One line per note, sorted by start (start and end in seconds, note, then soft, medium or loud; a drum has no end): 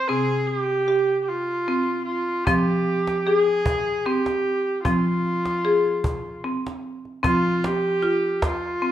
0.08 2.43 C3 medium
0.08 0.88 C4 medium
0.08 0.48 G#4 medium
0.47 1.21 G4 medium
0.88 1.68 G4 medium
1.21 1.29 G4 medium
1.28 2.05 F4 medium
1.68 2.46 C4 medium
2.05 2.46 F4 medium
2.44 4.81 F3 medium
2.44 3.26 C4 medium
2.44 3.27 G4 medium
2.44 cajon bass medium
2.68 cajon slap soft
3.07 cajon slap soft
3.26 4.07 G#4 medium
3.26 4.06 G#4 medium
3.48 cajon slap soft
3.66 cajon bass medium
4.05 4.84 C4 medium
4.05 4.83 G4 medium
4.05 cajon slap soft
4.26 cajon slap soft
4.45 cajon slap soft
4.84 7.19 F3 medium
4.84 5.64 C4 medium
4.84 6.39 F4 medium
4.84 cajon bass soft
5.25 cajon slap soft
5.45 cajon slap soft
5.65 6.44 G#4 medium
5.86 cajon slap soft
6.04 cajon bass soft
6.26 cajon slap soft
6.44 7.22 C4 medium
6.66 cajon slap soft
7.05 cajon slap soft
7.23 8.92 F3 medium
7.23 8.02 C4 medium
7.23 7.67 F4 medium
7.23 cajon bass soft
7.46 cajon slap soft
7.64 8.46 G4 medium
7.64 cajon slap soft
8.02 8.82 F4 medium
8.02 cajon slap soft
8.42 8.92 F4 medium
8.42 cajon bass medium
8.42 cajon slap soft
8.82 8.92 C4 medium